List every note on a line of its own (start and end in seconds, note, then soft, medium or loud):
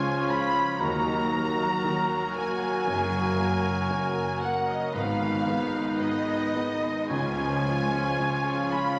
0.00 0.82 C#2 medium
0.00 0.82 C#3 medium
0.00 0.85 C#3 medium
0.00 0.77 F3 medium
0.00 0.28 F3 medium
0.00 0.30 G#3 medium
0.00 0.84 G#3 medium
0.00 0.76 C#4 medium
0.00 0.84 C#4 medium
0.00 0.30 F4 medium
0.00 0.76 F4 medium
0.00 0.81 F4 medium
0.00 0.84 F4 medium
0.00 0.84 G#4 medium
0.00 0.82 C#5 medium
0.00 0.84 C#5 medium
0.00 0.28 G#5 medium
0.00 0.29 G#5 loud
0.00 0.31 G#5 loud
0.28 0.55 C#3 medium
0.28 0.77 G#3 medium
0.28 0.77 F4 medium
0.28 0.77 C#5 medium
0.28 0.84 F5 medium
0.28 0.80 B5 loud
0.28 0.80 B5 medium
0.28 0.81 B5 loud
0.54 0.80 F3 medium
0.54 0.84 C#6 medium
0.79 1.66 D#2 medium
0.79 1.31 D#2 medium
0.79 2.89 D#3 medium
0.79 1.04 D#3 medium
0.79 1.31 D#3 medium
0.79 4.94 F#3 medium
0.79 4.95 A#3 medium
0.79 4.78 F#4 medium
0.79 4.94 F#4 medium
0.79 4.95 A#4 medium
0.79 2.34 A#5 medium
0.79 2.35 A#5 medium
0.79 2.35 A#5 loud
1.06 1.32 F#3 medium
1.06 2.90 D#4 medium
1.31 4.97 F#3 medium
1.31 1.80 F#3 medium
1.31 1.57 A#3 medium
1.31 1.80 F#4 medium
1.31 1.80 A#4 medium
1.57 1.83 F#3 medium
1.57 2.07 F#4 medium
1.83 2.33 D#2 medium
1.83 2.09 D#3 medium
1.83 2.34 D#3 medium
1.83 3.88 A#4 medium
2.08 2.36 F#3 medium
2.08 3.62 F#4 medium
2.33 2.82 F#3 medium
2.33 2.82 F#4 medium
2.33 2.82 A#4 medium
2.33 4.39 F#5 medium
2.33 4.36 G#5 medium
2.33 4.18 G#5 medium
2.33 4.38 G#5 loud
2.38 2.62 A#3 medium
2.60 2.87 F#3 medium
2.60 4.65 A#5 medium
2.85 3.72 F#1 medium
2.85 3.36 F#1 medium
2.85 4.97 F#2 medium
2.85 3.72 F#2 medium
2.85 3.36 F#2 medium
2.85 3.11 C#3 medium
3.10 4.97 C#3 medium
3.10 3.38 F#3 medium
3.37 4.97 A#3 medium
3.37 3.86 A#3 medium
3.37 3.64 A#3 medium
3.37 3.86 F#4 medium
3.37 3.86 A#4 medium
3.63 3.90 F#3 medium
3.63 4.14 F#4 medium
3.89 4.40 F#1 medium
3.89 4.40 F#2 medium
3.89 4.16 C#3 medium
3.89 4.97 A#4 medium
4.15 4.42 F#3 medium
4.15 4.97 F#4 medium
4.41 4.67 A#3 medium
4.41 4.90 A#3 medium
4.41 4.90 F#4 soft
4.41 4.90 A#4 medium
4.41 4.97 F#5 medium
4.41 4.67 F#5 medium
4.41 4.68 F#5 medium
4.67 4.93 F#3 medium
4.67 4.93 D#5 medium
4.67 4.95 D#5 medium
4.67 4.97 A#5 medium
4.93 5.81 G#1 medium
4.93 5.45 G#1 medium
4.93 7.14 G#2 medium
4.93 5.81 G#2 medium
4.93 5.45 G#2 medium
4.93 5.18 D#3 medium
4.93 6.94 D#3 medium
4.93 6.94 B3 medium
4.93 7.06 D#4 medium
4.93 7.07 D#4 medium
4.93 6.92 B4 medium
4.93 5.71 F5 medium
4.93 5.99 F5 medium
5.19 7.14 D#3 medium
5.19 5.46 G#3 medium
5.46 7.63 G#3 medium
5.46 5.95 G#3 medium
5.46 5.72 B3 medium
5.46 5.95 D#4 medium
5.46 5.95 B4 medium
5.72 5.98 G#3 medium
5.72 7.14 D#4 medium
5.97 6.52 G#1 medium
5.97 6.52 G#2 medium
5.97 6.26 D#3 medium
5.97 7.14 B4 medium
5.97 7.07 D#5 loud
5.97 7.10 D#5 medium
5.97 7.11 D#5 medium
6.26 6.54 G#3 medium
6.26 8.42 G#4 medium
6.54 7.06 G#3 soft
6.54 6.82 B3 medium
6.54 7.06 D#4 medium
6.54 7.06 B4 medium
6.54 7.14 D#5 medium
6.81 7.09 G#3 medium
6.81 7.14 B5 medium
7.09 7.63 C#2 medium
7.09 8.01 C#2 medium
7.09 8.99 C#3 medium
7.09 7.36 C#3 medium
7.09 7.63 C#3 medium
7.09 8.99 F3 medium
7.09 8.99 C#4 medium
7.09 8.99 F4 medium
7.09 8.99 C#5 medium
7.09 8.73 G#5 loud
7.09 8.71 G#5 medium
7.09 8.71 G#5 loud
7.37 7.65 F3 medium
7.37 8.99 C#4 medium
7.64 8.99 G#3 medium
7.64 7.92 G#3 medium
7.64 8.15 G#3 medium
7.64 8.15 F4 medium
7.64 8.15 C#5 medium
7.90 8.19 C#4 medium
7.90 8.99 F4 medium
8.17 8.70 C#2 medium
8.17 8.70 C#3 medium
8.17 8.46 G#3 medium
8.17 8.99 C#5 medium
8.44 8.72 F3 medium
8.44 8.99 G#4 medium
8.70 8.98 C#3 medium
8.70 8.99 G#3 soft
8.70 8.99 F4 medium
8.70 8.99 C#5 medium
8.70 8.99 F5 medium
8.70 8.99 B5 loud
8.70 8.99 B5 medium